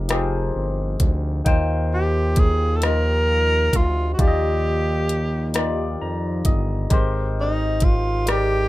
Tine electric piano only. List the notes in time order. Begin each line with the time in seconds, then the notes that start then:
Already playing: F3 C4 D#4 G4 G#4 A#4
0.09 F3 C4 D#4 G4 G#4 C5
1.44 D#3 D#4 F4 C5 G5
2.81 F3 D#4 F4 G4
2.85 D#5
4.17 D#3 D#4 F4 G4 D5
4.28 D#5
5.54 D#3 D#4 F4 G4
5.58 D5
6.02 A#5
6.46 D#5
6.90 G#3 D#4 G4 A#4 C5
8.26 G#3 D#4 G4 A#4
8.30 D5